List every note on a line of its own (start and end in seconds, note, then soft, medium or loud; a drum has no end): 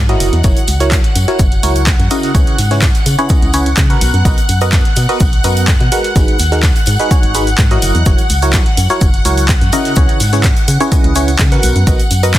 0.00 0.16 G#2 medium
0.00 12.39 F#5 medium
0.09 0.41 F#3 medium
0.09 0.41 E4 medium
0.09 0.41 F#4 medium
0.09 0.41 A#4 medium
0.09 0.41 D#5 loud
0.09 closed hi-hat soft
0.09 tambourine soft
0.20 0.30 F#1 medium
0.20 open hi-hat loud
0.20 tambourine medium
0.20 shaker medium
0.33 0.42 E2 loud
0.33 closed hi-hat soft
0.33 tambourine soft
0.44 0.54 F#1 loud
0.44 0.58 F#3 medium
0.44 0.58 E4 medium
0.44 0.58 F#4 medium
0.44 0.58 A#4 medium
0.44 0.58 C#5 medium
0.44 kick loud
0.44 closed hi-hat medium
0.44 tambourine soft
0.44 shaker medium
0.56 closed hi-hat soft
0.56 tambourine soft
0.67 1.00 C#2 medium
0.67 open hi-hat loud
0.67 tambourine medium
0.67 shaker medium
0.80 1.02 F#3 medium
0.80 1.02 E4 medium
0.80 1.02 F#4 medium
0.80 1.02 A#4 medium
0.80 1.02 C#5 medium
0.80 closed hi-hat soft
0.80 tambourine soft
0.91 kick loud
0.91 snare loud
0.91 clap loud
0.91 closed hi-hat medium
0.91 tambourine medium
0.91 shaker medium
1.04 closed hi-hat soft
1.04 tambourine soft
1.16 1.26 F#2 medium
1.16 open hi-hat loud
1.16 tambourine medium
1.16 shaker medium
1.28 1.41 F#3 medium
1.28 1.41 E4 medium
1.28 1.41 F#4 medium
1.28 1.41 A#4 medium
1.28 1.41 C#5 loud
1.28 closed hi-hat soft
1.28 tambourine soft
1.39 1.59 F#1 medium
1.39 kick loud
1.39 closed hi-hat medium
1.39 tambourine medium
1.39 shaker medium
1.52 closed hi-hat soft
1.52 tambourine soft
1.63 1.95 C#2 medium
1.63 1.85 F#3 medium
1.63 1.85 E4 medium
1.63 1.85 F#4 medium
1.63 1.85 A#4 medium
1.63 1.85 C#5 medium
1.63 open hi-hat loud
1.63 tambourine medium
1.63 shaker medium
1.76 closed hi-hat soft
1.76 tambourine soft
1.87 kick loud
1.87 snare loud
1.87 clap loud
1.87 closed hi-hat medium
1.87 tambourine soft
1.87 shaker medium
1.99 2.08 F#2 medium
1.99 closed hi-hat soft
1.99 tambourine soft
2.11 2.32 C#3 medium
2.11 2.32 E4 medium
2.11 2.32 F#4 medium
2.11 2.32 A#4 medium
2.11 2.32 D#5 loud
2.11 open hi-hat loud
2.11 tambourine loud
2.11 shaker medium
2.23 snare soft
2.23 closed hi-hat soft
2.23 tambourine soft
2.35 2.45 C#2 loud
2.35 2.57 C#3 medium
2.35 2.57 E4 medium
2.35 2.57 G#4 medium
2.35 2.57 B4 medium
2.35 2.57 C#5 medium
2.35 kick loud
2.35 closed hi-hat medium
2.35 tambourine medium
2.35 shaker medium
2.47 closed hi-hat soft
2.47 tambourine soft
2.58 2.91 G#2 medium
2.58 snare soft
2.58 open hi-hat loud
2.58 tambourine loud
2.58 shaker medium
2.71 2.84 C#3 medium
2.71 2.84 E4 medium
2.71 2.84 G#4 medium
2.71 2.84 B4 medium
2.71 2.84 C#5 medium
2.71 snare soft
2.71 closed hi-hat soft
2.71 tambourine soft
2.82 kick loud
2.82 snare loud
2.82 clap loud
2.82 closed hi-hat medium
2.82 tambourine medium
2.82 shaker medium
2.95 closed hi-hat soft
2.95 tambourine soft
3.06 3.16 C#3 medium
3.06 open hi-hat loud
3.06 tambourine loud
3.06 shaker medium
3.18 3.28 C#3 medium
3.18 3.28 E4 medium
3.18 3.28 G#4 medium
3.18 3.28 B4 medium
3.18 3.28 C#5 loud
3.18 closed hi-hat soft
3.18 tambourine soft
3.29 3.51 E4 medium
3.29 3.51 G#4 medium
3.29 3.51 B4 medium
3.29 3.51 D#5 medium
3.29 kick loud
3.29 closed hi-hat medium
3.29 tambourine medium
3.29 shaker medium
3.42 3.74 C#2 medium
3.42 closed hi-hat soft
3.42 tambourine soft
3.53 3.68 C#3 medium
3.53 3.68 E4 medium
3.53 3.68 G#4 medium
3.53 3.68 B4 medium
3.53 3.68 C#5 medium
3.53 open hi-hat loud
3.53 tambourine medium
3.53 shaker medium
3.66 closed hi-hat soft
3.66 tambourine soft
3.77 3.97 C#3 medium
3.77 kick loud
3.77 snare loud
3.77 clap loud
3.77 closed hi-hat medium
3.77 shaker loud
3.90 4.22 B3 medium
3.90 4.22 F#4 medium
3.90 4.22 A#4 medium
3.90 4.22 B4 medium
3.90 4.22 F#5 loud
3.90 closed hi-hat soft
3.90 tambourine soft
4.01 4.11 B1 loud
4.01 open hi-hat loud
4.01 tambourine medium
4.01 shaker medium
4.14 4.23 F#2 loud
4.14 closed hi-hat soft
4.14 tambourine soft
4.25 4.35 B1 loud
4.25 4.39 B3 medium
4.25 4.39 F#4 medium
4.25 4.39 A#4 medium
4.25 4.39 B4 medium
4.25 4.39 D#5 medium
4.25 kick loud
4.25 closed hi-hat medium
4.25 tambourine medium
4.25 shaker medium
4.37 closed hi-hat soft
4.37 tambourine soft
4.49 4.81 F#2 medium
4.49 open hi-hat loud
4.49 tambourine loud
4.49 shaker medium
4.61 4.83 B3 medium
4.61 4.83 F#4 medium
4.61 4.83 A#4 medium
4.61 4.83 B4 medium
4.61 4.83 D#5 medium
4.61 closed hi-hat soft
4.61 tambourine soft
4.72 kick loud
4.72 snare loud
4.72 clap loud
4.72 closed hi-hat medium
4.72 tambourine medium
4.72 shaker medium
4.85 closed hi-hat soft
4.85 tambourine soft
4.96 5.07 B2 medium
4.96 open hi-hat loud
4.96 tambourine loud
4.96 shaker medium
5.09 5.22 B3 medium
5.09 5.22 F#4 medium
5.09 5.22 A#4 medium
5.09 5.22 B4 medium
5.09 5.22 D#5 loud
5.09 closed hi-hat soft
5.09 tambourine soft
5.20 5.40 B1 medium
5.20 kick loud
5.20 closed hi-hat medium
5.20 tambourine medium
5.20 shaker medium
5.33 closed hi-hat soft
5.33 tambourine soft
5.44 5.76 F#2 medium
5.44 5.66 B3 medium
5.44 5.66 F#4 medium
5.44 5.66 A#4 medium
5.44 5.66 B4 medium
5.44 5.66 D#5 medium
5.44 open hi-hat loud
5.44 tambourine medium
5.44 shaker medium
5.57 closed hi-hat soft
5.57 tambourine soft
5.68 kick loud
5.68 snare loud
5.68 clap loud
5.68 closed hi-hat medium
5.68 tambourine medium
5.68 shaker loud
5.80 5.90 B2 loud
5.80 closed hi-hat soft
5.80 tambourine soft
5.92 6.13 G#3 medium
5.92 6.13 F#4 medium
5.92 6.13 A#4 medium
5.92 6.13 B4 medium
5.92 6.13 F#5 loud
5.92 open hi-hat loud
5.92 tambourine medium
5.92 shaker medium
6.03 snare soft
6.03 closed hi-hat soft
6.03 tambourine soft
6.16 6.26 G#1 loud
6.16 6.38 G#3 medium
6.16 6.38 D#4 medium
6.16 6.38 F#4 medium
6.16 6.38 G#4 medium
6.16 6.38 B4 medium
6.16 kick loud
6.16 closed hi-hat medium
6.16 tambourine medium
6.16 cabasa soft
6.16 shaker medium
6.28 closed hi-hat soft
6.28 tambourine soft
6.39 6.72 D#2 medium
6.39 snare soft
6.39 open hi-hat loud
6.39 tambourine medium
6.39 cabasa medium
6.39 shaker medium
6.52 6.65 G#3 medium
6.52 6.65 D#4 medium
6.52 6.65 F#4 medium
6.52 6.65 G#4 medium
6.52 6.65 A#4 medium
6.52 snare soft
6.52 closed hi-hat soft
6.52 tambourine soft
6.52 cabasa soft
6.63 kick loud
6.63 snare loud
6.63 clap loud
6.63 closed hi-hat medium
6.63 tambourine soft
6.63 cabasa soft
6.63 shaker medium
6.75 closed hi-hat soft
6.75 tambourine soft
6.86 6.97 G#2 medium
6.86 open hi-hat loud
6.86 tambourine loud
6.86 cabasa medium
6.86 shaker medium
6.99 7.09 G#3 medium
6.99 7.09 D#4 medium
6.99 7.09 F#4 medium
6.99 7.09 G#4 medium
6.99 7.09 B4 loud
6.99 closed hi-hat soft
6.99 tambourine soft
6.99 cabasa soft
7.11 7.32 G#3 medium
7.11 7.32 D#4 medium
7.11 7.32 F#4 medium
7.11 7.32 G#4 medium
7.11 7.32 C#5 medium
7.11 kick loud
7.11 closed hi-hat medium
7.11 tambourine medium
7.11 cabasa soft
7.11 shaker medium
7.23 7.55 G#1 loud
7.23 closed hi-hat soft
7.23 tambourine soft
7.34 7.49 G#3 medium
7.34 7.49 D#4 medium
7.34 7.49 F#4 medium
7.34 7.49 G#4 medium
7.34 7.49 B4 medium
7.34 open hi-hat loud
7.34 tambourine loud
7.34 cabasa medium
7.34 shaker medium
7.47 closed hi-hat soft
7.47 tambourine soft
7.47 cabasa soft
7.58 7.78 G#2 medium
7.58 kick loud
7.58 snare loud
7.58 clap loud
7.58 closed hi-hat medium
7.58 tambourine soft
7.58 cabasa soft
7.58 shaker medium
7.71 8.03 F#3 medium
7.71 8.03 E4 medium
7.71 8.03 F#4 medium
7.71 8.03 A#4 medium
7.71 8.03 D#5 loud
7.71 closed hi-hat soft
7.71 tambourine soft
7.71 cabasa soft
7.82 7.92 F#1 loud
7.82 open hi-hat loud
7.82 tambourine loud
7.82 cabasa medium
7.82 shaker medium
7.95 8.04 E2 loud
7.95 closed hi-hat soft
7.95 tambourine soft
7.95 cabasa soft
8.06 8.16 F#1 loud
8.06 8.20 F#3 medium
8.06 8.20 E4 medium
8.06 8.20 F#4 medium
8.06 8.20 A#4 medium
8.06 8.20 C#5 medium
8.06 kick loud
8.06 closed hi-hat medium
8.06 tambourine medium
8.06 cabasa soft
8.06 shaker medium
8.18 closed hi-hat soft
8.18 tambourine soft
8.30 8.62 C#2 medium
8.30 open hi-hat loud
8.30 tambourine medium
8.30 cabasa medium
8.30 shaker medium
8.42 8.64 F#3 medium
8.42 8.64 E4 medium
8.42 8.64 F#4 medium
8.42 8.64 A#4 medium
8.42 8.64 C#5 medium
8.42 closed hi-hat soft
8.42 tambourine soft
8.42 cabasa soft
8.53 kick medium
8.53 snare loud
8.53 clap loud
8.53 closed hi-hat medium
8.53 tambourine medium
8.53 cabasa soft
8.53 shaker medium
8.66 closed hi-hat soft
8.66 tambourine soft
8.77 8.87 F#2 loud
8.77 open hi-hat loud
8.77 tambourine medium
8.77 cabasa medium
8.77 shaker medium
8.90 9.03 F#3 medium
8.90 9.03 E4 medium
8.90 9.03 F#4 medium
8.90 9.03 A#4 medium
8.90 9.03 C#5 loud
8.90 closed hi-hat soft
8.90 tambourine soft
8.90 cabasa soft
9.01 9.21 F#1 medium
9.01 kick loud
9.01 closed hi-hat medium
9.01 tambourine soft
9.01 cabasa soft
9.01 shaker medium
9.14 closed hi-hat soft
9.14 tambourine soft
9.25 9.57 C#2 medium
9.25 9.47 F#3 medium
9.25 9.47 E4 medium
9.25 9.47 F#4 medium
9.25 9.47 A#4 medium
9.25 9.47 C#5 medium
9.25 open hi-hat loud
9.25 tambourine medium
9.25 cabasa medium
9.25 shaker medium
9.37 closed hi-hat soft
9.37 tambourine soft
9.37 cabasa soft
9.48 kick loud
9.48 snare loud
9.48 clap loud
9.48 closed hi-hat medium
9.48 tambourine soft
9.48 cabasa soft
9.48 shaker medium
9.61 9.70 F#2 medium
9.61 closed hi-hat soft
9.61 tambourine soft
9.61 cabasa soft
9.72 9.94 C#3 medium
9.72 9.94 E4 medium
9.72 9.94 F#4 medium
9.72 9.94 A#4 medium
9.72 9.94 D#5 loud
9.72 open hi-hat loud
9.72 tambourine medium
9.72 cabasa medium
9.72 shaker medium
9.85 snare soft
9.85 closed hi-hat soft
9.85 tambourine soft
9.85 cabasa soft
9.96 10.07 C#2 loud
9.96 10.19 C#3 medium
9.96 10.19 E4 medium
9.96 10.19 G#4 medium
9.96 10.19 B4 medium
9.96 10.19 C#5 medium
9.96 kick loud
9.96 closed hi-hat medium
9.96 tambourine soft
9.96 cabasa soft
9.96 shaker medium
10.09 closed hi-hat soft
10.09 tambourine soft
10.20 10.53 G#2 medium
10.20 snare soft
10.20 open hi-hat loud
10.20 tambourine medium
10.20 cabasa medium
10.20 shaker medium
10.32 10.46 C#3 medium
10.32 10.46 E4 medium
10.32 10.46 G#4 medium
10.32 10.46 B4 medium
10.32 10.46 C#5 medium
10.32 snare soft
10.32 closed hi-hat soft
10.32 tambourine soft
10.32 cabasa soft
10.44 kick medium
10.44 snare loud
10.44 clap loud
10.44 closed hi-hat medium
10.44 tambourine medium
10.44 cabasa soft
10.44 shaker medium
10.56 closed hi-hat soft
10.56 tambourine soft
10.68 10.78 C#3 medium
10.68 open hi-hat loud
10.68 tambourine medium
10.68 cabasa medium
10.68 shaker medium
10.80 10.90 C#3 medium
10.80 10.90 E4 medium
10.80 10.90 G#4 medium
10.80 10.90 B4 medium
10.80 10.90 C#5 loud
10.80 closed hi-hat soft
10.80 tambourine soft
10.80 cabasa soft
10.92 11.13 E4 medium
10.92 11.13 G#4 medium
10.92 11.13 B4 medium
10.92 11.13 D#5 loud
10.92 kick loud
10.92 closed hi-hat medium
10.92 tambourine medium
10.92 cabasa soft
10.92 shaker medium
11.04 11.36 C#2 loud
11.04 closed hi-hat soft
11.04 tambourine soft
11.15 11.30 C#3 medium
11.15 11.30 E4 medium
11.15 11.30 G#4 medium
11.15 11.30 B4 medium
11.15 11.30 C#5 loud
11.15 open hi-hat loud
11.15 tambourine medium
11.15 cabasa medium
11.15 shaker medium
11.28 closed hi-hat soft
11.28 tambourine soft
11.28 cabasa soft
11.39 11.59 C#3 medium
11.39 kick loud
11.39 snare loud
11.39 clap loud
11.39 closed hi-hat medium
11.39 tambourine soft
11.39 cabasa soft
11.39 shaker medium
11.52 11.84 B3 loud
11.52 11.84 F#4 medium
11.52 11.84 A#4 medium
11.52 11.84 B4 medium
11.52 11.84 F#5 loud
11.52 closed hi-hat soft
11.52 tambourine soft
11.52 cabasa soft
11.63 11.73 B1 loud
11.63 open hi-hat loud
11.63 tambourine medium
11.63 cabasa medium
11.63 shaker medium
11.76 11.85 F#2 loud
11.76 closed hi-hat soft
11.76 tambourine soft
11.76 cabasa soft
11.87 11.97 B1 loud
11.87 12.01 B3 medium
11.87 12.01 F#4 medium
11.87 12.01 A#4 medium
11.87 12.01 B4 medium
11.87 12.01 D#5 medium
11.87 kick loud
11.87 closed hi-hat medium
11.87 tambourine soft
11.87 cabasa soft
11.87 shaker medium
11.99 closed hi-hat soft
11.99 tambourine soft
11.99 cabasa soft
12.11 12.39 F#2 medium
12.11 open hi-hat loud
12.11 tambourine loud
12.11 cabasa medium
12.11 shaker medium
12.23 12.39 B3 medium
12.23 12.39 F#4 medium
12.23 12.39 A#4 medium
12.23 12.39 B4 medium
12.23 12.39 D#5 loud
12.23 closed hi-hat soft
12.23 tambourine soft
12.23 cabasa soft
12.34 kick medium
12.34 snare loud
12.34 clap loud
12.34 closed hi-hat medium
12.34 tambourine medium
12.34 cabasa soft
12.34 shaker medium